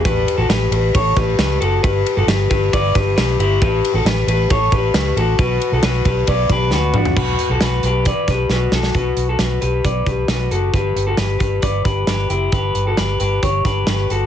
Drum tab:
CC |----------------|----------------|----------------|----------------|
RD |x-x-x-x-x-x-x-x-|x-x-x-x-x-x-x-x-|x-x-x-x-x-x-x-x-|x-x-x-x-x-x-----|
HH |p---------------|----------------|----------------|----------------|
SD |----o-------o---|----o-----o-o---|----o-------o---|----o-------o---|
T2 |----------------|----------------|----------------|--------------o-|
FT |----------------|----------------|----------------|---------------o|
BD |o-------o-o-----|o-----o-o-o-----|o-------o-o-----|o-----o-o-o-----|

CC |x---------------|----------------|----------------|----------------|
RD |----------------|----------------|----------------|----------------|
HH |--x-x-x-x-x-----|x-x-x-x-x-x-x-x-|x-x-x-x-x-x-x-x-|x-x-x-x-x-x-x-x-|
SD |----o-----o-o-oo|----o-------o---|----o-------o---|----o-----o-o---|
T2 |----------------|----------------|----------------|----------------|
FT |----------------|----------------|----------------|----------------|
BD |o-------o-o-----|o-------o-o-----|o-----o-o-o-----|o-------o-o-----|